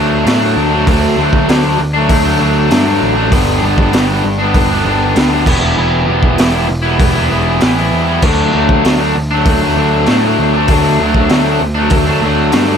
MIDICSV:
0, 0, Header, 1, 5, 480
1, 0, Start_track
1, 0, Tempo, 612245
1, 695, Time_signature, 4, 2, 24, 8
1, 10016, End_track
2, 0, Start_track
2, 0, Title_t, "Overdriven electric guitar"
2, 0, Program_c, 0, 29
2, 0, Note_on_c, 0, 50, 78
2, 0, Note_on_c, 0, 54, 83
2, 0, Note_on_c, 0, 57, 88
2, 0, Note_on_c, 0, 62, 92
2, 179, Note_off_c, 0, 50, 0
2, 188, Note_off_c, 0, 54, 0
2, 189, Note_on_c, 0, 50, 88
2, 198, Note_on_c, 0, 54, 92
2, 201, Note_off_c, 0, 57, 0
2, 211, Note_on_c, 0, 57, 105
2, 216, Note_off_c, 0, 62, 0
2, 219, Note_on_c, 0, 62, 102
2, 310, Note_off_c, 0, 62, 0
2, 313, Note_on_c, 0, 62, 77
2, 325, Note_off_c, 0, 57, 0
2, 334, Note_on_c, 0, 57, 72
2, 335, Note_off_c, 0, 54, 0
2, 344, Note_on_c, 0, 54, 65
2, 548, Note_off_c, 0, 62, 0
2, 551, Note_on_c, 0, 62, 86
2, 559, Note_off_c, 0, 57, 0
2, 560, Note_off_c, 0, 50, 0
2, 568, Note_on_c, 0, 57, 62
2, 581, Note_off_c, 0, 54, 0
2, 591, Note_on_c, 0, 54, 67
2, 678, Note_on_c, 0, 50, 98
2, 683, Note_off_c, 0, 54, 0
2, 692, Note_on_c, 0, 54, 110
2, 697, Note_off_c, 0, 57, 0
2, 707, Note_on_c, 0, 57, 98
2, 709, Note_off_c, 0, 62, 0
2, 712, Note_on_c, 0, 62, 104
2, 916, Note_off_c, 0, 50, 0
2, 925, Note_on_c, 0, 50, 82
2, 928, Note_off_c, 0, 54, 0
2, 938, Note_on_c, 0, 54, 88
2, 939, Note_off_c, 0, 57, 0
2, 948, Note_on_c, 0, 57, 91
2, 958, Note_off_c, 0, 62, 0
2, 961, Note_on_c, 0, 62, 93
2, 1142, Note_off_c, 0, 50, 0
2, 1152, Note_on_c, 0, 50, 105
2, 1160, Note_off_c, 0, 54, 0
2, 1165, Note_off_c, 0, 57, 0
2, 1169, Note_on_c, 0, 54, 92
2, 1175, Note_on_c, 0, 57, 100
2, 1181, Note_off_c, 0, 62, 0
2, 1184, Note_on_c, 0, 62, 109
2, 1265, Note_off_c, 0, 62, 0
2, 1274, Note_on_c, 0, 62, 80
2, 1286, Note_off_c, 0, 57, 0
2, 1295, Note_off_c, 0, 54, 0
2, 1295, Note_on_c, 0, 57, 67
2, 1305, Note_on_c, 0, 54, 58
2, 1398, Note_off_c, 0, 50, 0
2, 1401, Note_off_c, 0, 54, 0
2, 1404, Note_off_c, 0, 62, 0
2, 1405, Note_off_c, 0, 57, 0
2, 1518, Note_on_c, 0, 62, 70
2, 1540, Note_on_c, 0, 57, 65
2, 1548, Note_on_c, 0, 54, 57
2, 1742, Note_off_c, 0, 62, 0
2, 1751, Note_on_c, 0, 62, 67
2, 1758, Note_off_c, 0, 57, 0
2, 1768, Note_on_c, 0, 57, 67
2, 1770, Note_off_c, 0, 54, 0
2, 1780, Note_on_c, 0, 54, 67
2, 1863, Note_on_c, 0, 50, 80
2, 1866, Note_off_c, 0, 54, 0
2, 1875, Note_on_c, 0, 54, 84
2, 1881, Note_off_c, 0, 57, 0
2, 1889, Note_off_c, 0, 62, 0
2, 1890, Note_on_c, 0, 57, 83
2, 1899, Note_on_c, 0, 62, 87
2, 2102, Note_off_c, 0, 50, 0
2, 2111, Note_on_c, 0, 50, 90
2, 2116, Note_off_c, 0, 54, 0
2, 2124, Note_off_c, 0, 57, 0
2, 2126, Note_on_c, 0, 54, 92
2, 2133, Note_on_c, 0, 57, 92
2, 2134, Note_off_c, 0, 62, 0
2, 2143, Note_on_c, 0, 62, 100
2, 2231, Note_off_c, 0, 62, 0
2, 2240, Note_on_c, 0, 62, 79
2, 2244, Note_off_c, 0, 57, 0
2, 2254, Note_on_c, 0, 57, 73
2, 2258, Note_off_c, 0, 54, 0
2, 2267, Note_on_c, 0, 54, 64
2, 2455, Note_off_c, 0, 62, 0
2, 2465, Note_on_c, 0, 62, 73
2, 2468, Note_off_c, 0, 57, 0
2, 2477, Note_on_c, 0, 57, 75
2, 2478, Note_off_c, 0, 50, 0
2, 2485, Note_off_c, 0, 54, 0
2, 2494, Note_on_c, 0, 54, 70
2, 2580, Note_off_c, 0, 62, 0
2, 2585, Note_on_c, 0, 43, 94
2, 2586, Note_off_c, 0, 57, 0
2, 2595, Note_off_c, 0, 54, 0
2, 2602, Note_on_c, 0, 50, 113
2, 2608, Note_on_c, 0, 55, 97
2, 2614, Note_on_c, 0, 59, 113
2, 2625, Note_on_c, 0, 62, 108
2, 2818, Note_off_c, 0, 50, 0
2, 2827, Note_on_c, 0, 50, 89
2, 2838, Note_off_c, 0, 55, 0
2, 2839, Note_off_c, 0, 59, 0
2, 2841, Note_on_c, 0, 55, 88
2, 2842, Note_on_c, 0, 59, 86
2, 2851, Note_off_c, 0, 62, 0
2, 2861, Note_on_c, 0, 62, 94
2, 3061, Note_off_c, 0, 43, 0
2, 3070, Note_on_c, 0, 43, 91
2, 3073, Note_off_c, 0, 50, 0
2, 3082, Note_on_c, 0, 50, 90
2, 3083, Note_off_c, 0, 55, 0
2, 3086, Note_on_c, 0, 55, 107
2, 3094, Note_off_c, 0, 62, 0
2, 3095, Note_off_c, 0, 59, 0
2, 3099, Note_on_c, 0, 59, 106
2, 3104, Note_on_c, 0, 62, 99
2, 3188, Note_off_c, 0, 62, 0
2, 3198, Note_on_c, 0, 62, 85
2, 3211, Note_off_c, 0, 59, 0
2, 3215, Note_on_c, 0, 59, 65
2, 3230, Note_off_c, 0, 55, 0
2, 3233, Note_on_c, 0, 55, 63
2, 3316, Note_off_c, 0, 50, 0
2, 3321, Note_off_c, 0, 62, 0
2, 3327, Note_off_c, 0, 55, 0
2, 3329, Note_off_c, 0, 59, 0
2, 3435, Note_on_c, 0, 62, 80
2, 3437, Note_off_c, 0, 43, 0
2, 3460, Note_on_c, 0, 59, 69
2, 3469, Note_on_c, 0, 55, 61
2, 3674, Note_off_c, 0, 62, 0
2, 3683, Note_on_c, 0, 62, 81
2, 3693, Note_off_c, 0, 59, 0
2, 3702, Note_on_c, 0, 59, 67
2, 3706, Note_off_c, 0, 55, 0
2, 3715, Note_on_c, 0, 55, 65
2, 3793, Note_on_c, 0, 50, 82
2, 3803, Note_off_c, 0, 55, 0
2, 3812, Note_on_c, 0, 55, 84
2, 3814, Note_off_c, 0, 59, 0
2, 3817, Note_off_c, 0, 62, 0
2, 3823, Note_on_c, 0, 59, 86
2, 3826, Note_on_c, 0, 62, 93
2, 4034, Note_on_c, 0, 43, 92
2, 4035, Note_off_c, 0, 50, 0
2, 4042, Note_off_c, 0, 55, 0
2, 4044, Note_on_c, 0, 50, 98
2, 4051, Note_on_c, 0, 55, 94
2, 4056, Note_off_c, 0, 59, 0
2, 4058, Note_off_c, 0, 62, 0
2, 4065, Note_on_c, 0, 59, 88
2, 4067, Note_on_c, 0, 62, 91
2, 4140, Note_off_c, 0, 62, 0
2, 4150, Note_on_c, 0, 62, 72
2, 4161, Note_off_c, 0, 59, 0
2, 4170, Note_on_c, 0, 59, 72
2, 4173, Note_off_c, 0, 55, 0
2, 4182, Note_on_c, 0, 55, 68
2, 4262, Note_off_c, 0, 62, 0
2, 4264, Note_off_c, 0, 43, 0
2, 4269, Note_off_c, 0, 50, 0
2, 4272, Note_on_c, 0, 52, 93
2, 4273, Note_off_c, 0, 59, 0
2, 4279, Note_off_c, 0, 55, 0
2, 4289, Note_on_c, 0, 55, 97
2, 4292, Note_on_c, 0, 59, 109
2, 4301, Note_on_c, 0, 64, 96
2, 4382, Note_off_c, 0, 64, 0
2, 4392, Note_on_c, 0, 64, 78
2, 4397, Note_off_c, 0, 59, 0
2, 4406, Note_on_c, 0, 59, 69
2, 4420, Note_off_c, 0, 55, 0
2, 4429, Note_on_c, 0, 55, 67
2, 4502, Note_off_c, 0, 52, 0
2, 4512, Note_on_c, 0, 52, 101
2, 4515, Note_off_c, 0, 55, 0
2, 4523, Note_off_c, 0, 59, 0
2, 4524, Note_on_c, 0, 55, 108
2, 4529, Note_off_c, 0, 64, 0
2, 4533, Note_on_c, 0, 59, 103
2, 4539, Note_on_c, 0, 64, 102
2, 4742, Note_off_c, 0, 52, 0
2, 4752, Note_on_c, 0, 52, 84
2, 4759, Note_off_c, 0, 55, 0
2, 4764, Note_off_c, 0, 59, 0
2, 4769, Note_on_c, 0, 55, 84
2, 4774, Note_on_c, 0, 59, 90
2, 4775, Note_off_c, 0, 64, 0
2, 4784, Note_on_c, 0, 64, 89
2, 4992, Note_off_c, 0, 52, 0
2, 4997, Note_off_c, 0, 55, 0
2, 5001, Note_on_c, 0, 52, 90
2, 5007, Note_on_c, 0, 55, 103
2, 5008, Note_off_c, 0, 59, 0
2, 5017, Note_on_c, 0, 59, 89
2, 5020, Note_off_c, 0, 64, 0
2, 5030, Note_on_c, 0, 64, 112
2, 5113, Note_off_c, 0, 64, 0
2, 5123, Note_on_c, 0, 64, 83
2, 5131, Note_off_c, 0, 59, 0
2, 5141, Note_on_c, 0, 59, 64
2, 5147, Note_off_c, 0, 55, 0
2, 5156, Note_on_c, 0, 55, 64
2, 5223, Note_off_c, 0, 55, 0
2, 5225, Note_off_c, 0, 52, 0
2, 5230, Note_off_c, 0, 59, 0
2, 5231, Note_off_c, 0, 64, 0
2, 5348, Note_on_c, 0, 64, 66
2, 5367, Note_on_c, 0, 59, 66
2, 5382, Note_on_c, 0, 55, 53
2, 5579, Note_off_c, 0, 64, 0
2, 5589, Note_on_c, 0, 64, 74
2, 5603, Note_off_c, 0, 59, 0
2, 5612, Note_on_c, 0, 59, 71
2, 5622, Note_off_c, 0, 55, 0
2, 5631, Note_on_c, 0, 55, 56
2, 5712, Note_off_c, 0, 55, 0
2, 5712, Note_on_c, 0, 52, 79
2, 5721, Note_on_c, 0, 55, 81
2, 5725, Note_off_c, 0, 59, 0
2, 5733, Note_off_c, 0, 64, 0
2, 5734, Note_on_c, 0, 59, 85
2, 5743, Note_on_c, 0, 64, 81
2, 5956, Note_off_c, 0, 52, 0
2, 5964, Note_off_c, 0, 55, 0
2, 5965, Note_on_c, 0, 52, 89
2, 5969, Note_off_c, 0, 59, 0
2, 5973, Note_on_c, 0, 55, 104
2, 5979, Note_on_c, 0, 59, 100
2, 5987, Note_off_c, 0, 64, 0
2, 5997, Note_on_c, 0, 64, 111
2, 6070, Note_off_c, 0, 64, 0
2, 6080, Note_on_c, 0, 64, 87
2, 6085, Note_off_c, 0, 59, 0
2, 6094, Note_on_c, 0, 59, 68
2, 6106, Note_off_c, 0, 55, 0
2, 6115, Note_on_c, 0, 55, 70
2, 6308, Note_off_c, 0, 64, 0
2, 6318, Note_on_c, 0, 64, 81
2, 6324, Note_off_c, 0, 59, 0
2, 6328, Note_off_c, 0, 52, 0
2, 6333, Note_on_c, 0, 59, 66
2, 6343, Note_off_c, 0, 55, 0
2, 6352, Note_on_c, 0, 55, 63
2, 6429, Note_off_c, 0, 64, 0
2, 6437, Note_off_c, 0, 59, 0
2, 6447, Note_off_c, 0, 55, 0
2, 6447, Note_on_c, 0, 50, 102
2, 6458, Note_on_c, 0, 54, 101
2, 6464, Note_on_c, 0, 57, 100
2, 6479, Note_on_c, 0, 62, 99
2, 6678, Note_off_c, 0, 50, 0
2, 6681, Note_on_c, 0, 50, 82
2, 6689, Note_off_c, 0, 54, 0
2, 6692, Note_on_c, 0, 54, 86
2, 6700, Note_off_c, 0, 57, 0
2, 6703, Note_on_c, 0, 57, 86
2, 6708, Note_off_c, 0, 62, 0
2, 6711, Note_on_c, 0, 62, 86
2, 6916, Note_off_c, 0, 50, 0
2, 6919, Note_on_c, 0, 50, 94
2, 6929, Note_off_c, 0, 54, 0
2, 6932, Note_on_c, 0, 54, 101
2, 6941, Note_off_c, 0, 57, 0
2, 6944, Note_on_c, 0, 57, 97
2, 6947, Note_off_c, 0, 62, 0
2, 6950, Note_on_c, 0, 62, 113
2, 7034, Note_off_c, 0, 62, 0
2, 7037, Note_on_c, 0, 62, 80
2, 7048, Note_off_c, 0, 57, 0
2, 7051, Note_on_c, 0, 57, 67
2, 7068, Note_off_c, 0, 54, 0
2, 7071, Note_on_c, 0, 54, 60
2, 7174, Note_off_c, 0, 57, 0
2, 7175, Note_off_c, 0, 50, 0
2, 7179, Note_off_c, 0, 54, 0
2, 7180, Note_off_c, 0, 62, 0
2, 7299, Note_on_c, 0, 62, 74
2, 7319, Note_on_c, 0, 57, 66
2, 7326, Note_on_c, 0, 54, 66
2, 7529, Note_off_c, 0, 62, 0
2, 7532, Note_on_c, 0, 62, 68
2, 7543, Note_off_c, 0, 57, 0
2, 7552, Note_on_c, 0, 57, 74
2, 7553, Note_off_c, 0, 54, 0
2, 7562, Note_on_c, 0, 54, 58
2, 7656, Note_off_c, 0, 54, 0
2, 7659, Note_on_c, 0, 50, 75
2, 7665, Note_on_c, 0, 54, 85
2, 7672, Note_off_c, 0, 57, 0
2, 7682, Note_on_c, 0, 57, 86
2, 7689, Note_off_c, 0, 62, 0
2, 7692, Note_on_c, 0, 62, 85
2, 7875, Note_off_c, 0, 50, 0
2, 7885, Note_on_c, 0, 50, 92
2, 7892, Note_off_c, 0, 54, 0
2, 7898, Note_off_c, 0, 57, 0
2, 7902, Note_on_c, 0, 54, 106
2, 7908, Note_on_c, 0, 57, 106
2, 7914, Note_off_c, 0, 62, 0
2, 7917, Note_on_c, 0, 62, 105
2, 8016, Note_off_c, 0, 62, 0
2, 8020, Note_on_c, 0, 62, 75
2, 8027, Note_off_c, 0, 57, 0
2, 8036, Note_on_c, 0, 57, 69
2, 8038, Note_off_c, 0, 54, 0
2, 8048, Note_on_c, 0, 54, 66
2, 8252, Note_off_c, 0, 50, 0
2, 8257, Note_off_c, 0, 62, 0
2, 8260, Note_on_c, 0, 62, 84
2, 8271, Note_off_c, 0, 57, 0
2, 8281, Note_on_c, 0, 57, 73
2, 8286, Note_off_c, 0, 54, 0
2, 8295, Note_on_c, 0, 54, 67
2, 8381, Note_off_c, 0, 54, 0
2, 8382, Note_on_c, 0, 50, 98
2, 8390, Note_on_c, 0, 54, 109
2, 8393, Note_off_c, 0, 57, 0
2, 8403, Note_on_c, 0, 57, 107
2, 8410, Note_off_c, 0, 62, 0
2, 8413, Note_on_c, 0, 62, 112
2, 8612, Note_off_c, 0, 50, 0
2, 8622, Note_on_c, 0, 50, 78
2, 8628, Note_off_c, 0, 54, 0
2, 8634, Note_off_c, 0, 57, 0
2, 8637, Note_on_c, 0, 54, 81
2, 8644, Note_on_c, 0, 57, 87
2, 8649, Note_off_c, 0, 62, 0
2, 8652, Note_on_c, 0, 62, 91
2, 8844, Note_off_c, 0, 50, 0
2, 8853, Note_on_c, 0, 50, 97
2, 8854, Note_off_c, 0, 54, 0
2, 8864, Note_on_c, 0, 54, 101
2, 8870, Note_off_c, 0, 57, 0
2, 8879, Note_on_c, 0, 57, 102
2, 8882, Note_off_c, 0, 62, 0
2, 8885, Note_on_c, 0, 62, 102
2, 8972, Note_off_c, 0, 62, 0
2, 8982, Note_on_c, 0, 62, 80
2, 8991, Note_off_c, 0, 57, 0
2, 9000, Note_on_c, 0, 57, 70
2, 9006, Note_off_c, 0, 54, 0
2, 9015, Note_on_c, 0, 54, 62
2, 9100, Note_off_c, 0, 50, 0
2, 9102, Note_off_c, 0, 62, 0
2, 9104, Note_off_c, 0, 54, 0
2, 9107, Note_off_c, 0, 57, 0
2, 9214, Note_on_c, 0, 62, 73
2, 9238, Note_on_c, 0, 57, 67
2, 9253, Note_on_c, 0, 54, 66
2, 9445, Note_off_c, 0, 62, 0
2, 9454, Note_on_c, 0, 62, 79
2, 9467, Note_off_c, 0, 57, 0
2, 9476, Note_on_c, 0, 57, 71
2, 9478, Note_off_c, 0, 54, 0
2, 9487, Note_on_c, 0, 54, 60
2, 9580, Note_on_c, 0, 50, 74
2, 9581, Note_off_c, 0, 54, 0
2, 9590, Note_off_c, 0, 57, 0
2, 9591, Note_on_c, 0, 54, 82
2, 9600, Note_on_c, 0, 57, 90
2, 9603, Note_off_c, 0, 62, 0
2, 9613, Note_on_c, 0, 62, 90
2, 9797, Note_off_c, 0, 50, 0
2, 9806, Note_on_c, 0, 50, 92
2, 9813, Note_off_c, 0, 54, 0
2, 9815, Note_off_c, 0, 57, 0
2, 9822, Note_on_c, 0, 54, 90
2, 9824, Note_on_c, 0, 57, 97
2, 9826, Note_off_c, 0, 62, 0
2, 9835, Note_on_c, 0, 62, 105
2, 9926, Note_off_c, 0, 62, 0
2, 9935, Note_on_c, 0, 62, 83
2, 9940, Note_off_c, 0, 57, 0
2, 9950, Note_on_c, 0, 57, 68
2, 9958, Note_off_c, 0, 54, 0
2, 9967, Note_on_c, 0, 54, 62
2, 10016, Note_off_c, 0, 50, 0
2, 10016, Note_off_c, 0, 54, 0
2, 10016, Note_off_c, 0, 57, 0
2, 10016, Note_off_c, 0, 62, 0
2, 10016, End_track
3, 0, Start_track
3, 0, Title_t, "Picked electric bass"
3, 0, Program_c, 1, 34
3, 0, Note_on_c, 1, 38, 95
3, 188, Note_off_c, 1, 38, 0
3, 200, Note_on_c, 1, 45, 90
3, 426, Note_off_c, 1, 45, 0
3, 444, Note_on_c, 1, 38, 88
3, 667, Note_off_c, 1, 38, 0
3, 685, Note_on_c, 1, 38, 89
3, 907, Note_off_c, 1, 38, 0
3, 920, Note_on_c, 1, 38, 92
3, 1144, Note_off_c, 1, 38, 0
3, 1168, Note_on_c, 1, 38, 104
3, 1387, Note_off_c, 1, 38, 0
3, 1406, Note_on_c, 1, 38, 93
3, 1625, Note_off_c, 1, 38, 0
3, 1641, Note_on_c, 1, 38, 101
3, 1862, Note_off_c, 1, 38, 0
3, 1885, Note_on_c, 1, 38, 93
3, 2104, Note_off_c, 1, 38, 0
3, 2128, Note_on_c, 1, 43, 88
3, 2346, Note_off_c, 1, 43, 0
3, 2364, Note_on_c, 1, 33, 87
3, 2583, Note_off_c, 1, 33, 0
3, 2604, Note_on_c, 1, 31, 103
3, 2823, Note_off_c, 1, 31, 0
3, 2841, Note_on_c, 1, 31, 95
3, 3061, Note_off_c, 1, 31, 0
3, 3079, Note_on_c, 1, 31, 101
3, 3300, Note_off_c, 1, 31, 0
3, 3324, Note_on_c, 1, 31, 95
3, 3543, Note_off_c, 1, 31, 0
3, 3564, Note_on_c, 1, 31, 98
3, 3783, Note_off_c, 1, 31, 0
3, 3802, Note_on_c, 1, 31, 94
3, 4022, Note_off_c, 1, 31, 0
3, 4050, Note_on_c, 1, 38, 90
3, 4267, Note_off_c, 1, 38, 0
3, 4280, Note_on_c, 1, 28, 89
3, 4501, Note_off_c, 1, 28, 0
3, 4526, Note_on_c, 1, 28, 94
3, 4745, Note_off_c, 1, 28, 0
3, 4761, Note_on_c, 1, 28, 91
3, 4982, Note_off_c, 1, 28, 0
3, 5003, Note_on_c, 1, 28, 97
3, 5224, Note_off_c, 1, 28, 0
3, 5246, Note_on_c, 1, 28, 91
3, 5466, Note_off_c, 1, 28, 0
3, 5484, Note_on_c, 1, 28, 95
3, 5705, Note_off_c, 1, 28, 0
3, 5727, Note_on_c, 1, 28, 89
3, 5947, Note_off_c, 1, 28, 0
3, 5972, Note_on_c, 1, 33, 93
3, 6190, Note_off_c, 1, 33, 0
3, 6212, Note_on_c, 1, 40, 87
3, 6430, Note_off_c, 1, 40, 0
3, 6448, Note_on_c, 1, 38, 89
3, 6669, Note_off_c, 1, 38, 0
3, 6692, Note_on_c, 1, 38, 93
3, 6912, Note_off_c, 1, 38, 0
3, 6940, Note_on_c, 1, 38, 107
3, 7156, Note_off_c, 1, 38, 0
3, 7185, Note_on_c, 1, 38, 92
3, 7399, Note_off_c, 1, 38, 0
3, 7418, Note_on_c, 1, 38, 101
3, 7636, Note_off_c, 1, 38, 0
3, 7652, Note_on_c, 1, 38, 94
3, 7873, Note_off_c, 1, 38, 0
3, 7898, Note_on_c, 1, 45, 91
3, 8117, Note_off_c, 1, 45, 0
3, 8142, Note_on_c, 1, 38, 81
3, 8359, Note_off_c, 1, 38, 0
3, 8379, Note_on_c, 1, 38, 93
3, 8598, Note_off_c, 1, 38, 0
3, 8621, Note_on_c, 1, 38, 92
3, 8840, Note_off_c, 1, 38, 0
3, 8859, Note_on_c, 1, 38, 105
3, 9079, Note_off_c, 1, 38, 0
3, 9102, Note_on_c, 1, 38, 97
3, 9321, Note_off_c, 1, 38, 0
3, 9338, Note_on_c, 1, 38, 96
3, 9559, Note_off_c, 1, 38, 0
3, 9581, Note_on_c, 1, 38, 94
3, 9801, Note_off_c, 1, 38, 0
3, 9826, Note_on_c, 1, 43, 94
3, 10016, Note_off_c, 1, 43, 0
3, 10016, End_track
4, 0, Start_track
4, 0, Title_t, "Muted overdriven electric guitar strokes"
4, 1408, Note_on_c, 9, 29, 50
4, 1486, Note_off_c, 9, 29, 0
4, 3325, Note_on_c, 9, 29, 52
4, 3403, Note_off_c, 9, 29, 0
4, 5233, Note_on_c, 9, 29, 52
4, 5311, Note_off_c, 9, 29, 0
4, 7177, Note_on_c, 9, 29, 57
4, 7255, Note_off_c, 9, 29, 0
4, 9110, Note_on_c, 9, 29, 49
4, 9188, Note_off_c, 9, 29, 0
4, 10016, End_track
5, 0, Start_track
5, 0, Title_t, "Drums"
5, 207, Note_on_c, 9, 46, 58
5, 218, Note_on_c, 9, 38, 115
5, 285, Note_off_c, 9, 46, 0
5, 296, Note_off_c, 9, 38, 0
5, 681, Note_on_c, 9, 46, 64
5, 684, Note_on_c, 9, 36, 115
5, 759, Note_off_c, 9, 46, 0
5, 762, Note_off_c, 9, 36, 0
5, 1041, Note_on_c, 9, 36, 85
5, 1120, Note_off_c, 9, 36, 0
5, 1165, Note_on_c, 9, 46, 70
5, 1176, Note_on_c, 9, 38, 123
5, 1244, Note_off_c, 9, 46, 0
5, 1255, Note_off_c, 9, 38, 0
5, 1640, Note_on_c, 9, 46, 69
5, 1642, Note_on_c, 9, 36, 110
5, 1718, Note_off_c, 9, 46, 0
5, 1721, Note_off_c, 9, 36, 0
5, 2121, Note_on_c, 9, 46, 64
5, 2132, Note_on_c, 9, 38, 114
5, 2199, Note_off_c, 9, 46, 0
5, 2210, Note_off_c, 9, 38, 0
5, 2602, Note_on_c, 9, 36, 113
5, 2602, Note_on_c, 9, 46, 66
5, 2681, Note_off_c, 9, 36, 0
5, 2681, Note_off_c, 9, 46, 0
5, 2963, Note_on_c, 9, 36, 89
5, 3041, Note_off_c, 9, 36, 0
5, 3081, Note_on_c, 9, 46, 63
5, 3092, Note_on_c, 9, 38, 119
5, 3159, Note_off_c, 9, 46, 0
5, 3170, Note_off_c, 9, 38, 0
5, 3561, Note_on_c, 9, 46, 67
5, 3563, Note_on_c, 9, 36, 116
5, 3640, Note_off_c, 9, 46, 0
5, 3641, Note_off_c, 9, 36, 0
5, 4043, Note_on_c, 9, 46, 58
5, 4054, Note_on_c, 9, 38, 109
5, 4121, Note_off_c, 9, 46, 0
5, 4132, Note_off_c, 9, 38, 0
5, 4283, Note_on_c, 9, 36, 113
5, 4287, Note_on_c, 9, 49, 111
5, 4362, Note_off_c, 9, 36, 0
5, 4365, Note_off_c, 9, 49, 0
5, 4881, Note_on_c, 9, 36, 92
5, 4960, Note_off_c, 9, 36, 0
5, 5002, Note_on_c, 9, 46, 66
5, 5013, Note_on_c, 9, 38, 112
5, 5081, Note_off_c, 9, 46, 0
5, 5092, Note_off_c, 9, 38, 0
5, 5485, Note_on_c, 9, 36, 113
5, 5485, Note_on_c, 9, 46, 63
5, 5563, Note_off_c, 9, 36, 0
5, 5564, Note_off_c, 9, 46, 0
5, 5961, Note_on_c, 9, 46, 61
5, 5972, Note_on_c, 9, 38, 113
5, 6040, Note_off_c, 9, 46, 0
5, 6051, Note_off_c, 9, 38, 0
5, 6446, Note_on_c, 9, 49, 107
5, 6449, Note_on_c, 9, 36, 122
5, 6525, Note_off_c, 9, 49, 0
5, 6528, Note_off_c, 9, 36, 0
5, 6813, Note_on_c, 9, 36, 87
5, 6892, Note_off_c, 9, 36, 0
5, 6934, Note_on_c, 9, 46, 63
5, 6945, Note_on_c, 9, 38, 113
5, 7013, Note_off_c, 9, 46, 0
5, 7024, Note_off_c, 9, 38, 0
5, 7413, Note_on_c, 9, 46, 63
5, 7414, Note_on_c, 9, 36, 119
5, 7492, Note_off_c, 9, 46, 0
5, 7493, Note_off_c, 9, 36, 0
5, 7888, Note_on_c, 9, 46, 58
5, 7899, Note_on_c, 9, 38, 111
5, 7966, Note_off_c, 9, 46, 0
5, 7977, Note_off_c, 9, 38, 0
5, 8371, Note_on_c, 9, 46, 62
5, 8377, Note_on_c, 9, 36, 108
5, 8449, Note_off_c, 9, 46, 0
5, 8455, Note_off_c, 9, 36, 0
5, 8738, Note_on_c, 9, 36, 90
5, 8816, Note_off_c, 9, 36, 0
5, 8853, Note_on_c, 9, 46, 66
5, 8864, Note_on_c, 9, 38, 113
5, 8932, Note_off_c, 9, 46, 0
5, 8943, Note_off_c, 9, 38, 0
5, 9327, Note_on_c, 9, 46, 64
5, 9338, Note_on_c, 9, 36, 124
5, 9406, Note_off_c, 9, 46, 0
5, 9416, Note_off_c, 9, 36, 0
5, 9815, Note_on_c, 9, 46, 63
5, 9826, Note_on_c, 9, 38, 109
5, 9894, Note_off_c, 9, 46, 0
5, 9905, Note_off_c, 9, 38, 0
5, 10016, End_track
0, 0, End_of_file